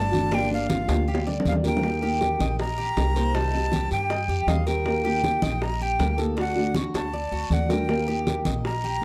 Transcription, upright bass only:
0.00 0.83 G1 medium
0.88 1.41 D2 medium
1.45 2.34 D#2 medium
2.39 2.93 A#1 medium
2.97 3.86 C2 medium
3.91 4.27 G2 medium
4.28 4.46 F2 medium
4.47 5.36 D#2 medium
5.42 5.95 A#1 medium
5.99 6.88 D2 medium
6.94 7.30 D2 medium
7.32 7.49 D2 medium
7.50 8.39 D#2 medium
8.45 8.98 A#1 medium

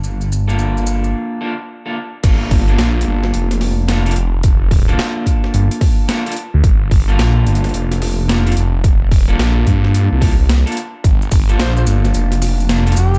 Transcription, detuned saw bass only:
0.00 1.14 G1 medium
2.24 2.77 G1 loud
2.79 3.05 A#1 loud
3.07 3.32 G1 loud
3.34 4.15 F1 loud
4.17 4.97 F1 loud
5.54 5.69 G1 loud
6.54 6.62 D2 loud
6.64 7.17 G1 loud
7.19 7.45 A#1 loud
7.46 7.72 G1 loud
7.74 8.55 F1 loud
8.57 9.14 F1 loud
9.14 9.38 E1 loud
9.39 9.65 A#1 loud
9.67 10.09 G2 loud
10.12 10.37 C2 medium
10.40 10.64 C2 loud
11.04 11.58 G1 loud
11.60 11.85 A#1 loud
11.87 12.13 G1 loud
12.15 12.96 F1 loud
12.97 13.19 F1 loud

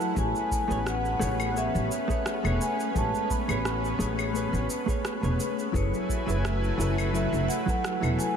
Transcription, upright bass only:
0.16 0.31 A1 loud
0.70 1.15 A1 medium
1.22 1.68 A1 medium
1.75 1.87 A1 medium
2.44 2.57 E1 medium
2.95 3.10 A1 loud
3.49 3.94 A1 medium
3.99 4.47 A1 medium
4.53 4.66 A1 medium
5.23 5.36 E1 medium
5.74 5.89 F#1 loud
6.27 6.73 F#1 medium
6.78 7.26 F#1 medium
7.33 7.45 F#1 loud
8.02 8.15 E1 loud

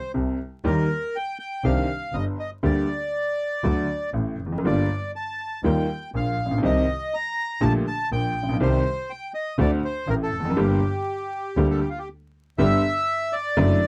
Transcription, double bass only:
0.15 0.36 C2 soft
0.64 0.85 D#2 medium
1.64 1.85 C2 medium
2.13 2.34 G1 soft
2.63 2.84 D2 medium
3.64 3.85 D2 medium
4.13 4.35 A1 soft
4.39 4.64 F1 soft
4.64 4.85 G1 medium
5.63 5.84 D#2 medium
6.14 6.34 A#1 soft
6.38 6.62 A#1 soft
6.62 6.83 C2 medium
7.61 7.82 A#1 medium
8.11 8.31 A#1 soft
8.35 8.59 A#1 soft
8.60 8.80 C2 medium
9.58 9.79 D2 medium
10.07 10.28 A1 soft
10.33 10.56 F1 soft
10.57 10.78 G1 medium
11.57 11.78 D2 medium
12.59 12.80 G1 medium
13.57 13.78 F#1 medium

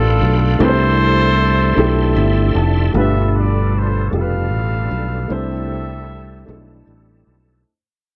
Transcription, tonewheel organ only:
0.00 2.92 A4 medium
0.00 0.59 F5 medium
0.00 0.57 G5 medium
0.00 0.59 B5 medium
0.61 2.93 D5 medium
0.61 2.93 E5 medium
0.61 2.93 C6 medium
2.95 5.28 B2 medium
2.95 7.62 G3 medium
2.95 5.28 D4 medium
2.95 5.28 F4 medium
2.95 7.61 A4 medium
5.31 7.64 C4 medium
5.31 7.64 D4 medium
5.31 7.64 E4 medium

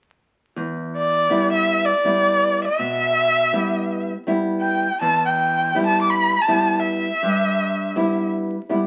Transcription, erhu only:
0.96 1.49 D5 medium
1.53 1.86 E5 medium
1.85 2.63 D5 medium
2.65 4.08 E5 medium
4.62 4.98 G5 medium
5.01 5.24 A5 medium
5.26 5.83 G5 medium
5.86 6.01 A5 medium
6.02 6.11 D6 medium
6.10 6.43 B5 medium
6.42 6.81 A5 medium
6.80 8.28 E5 medium

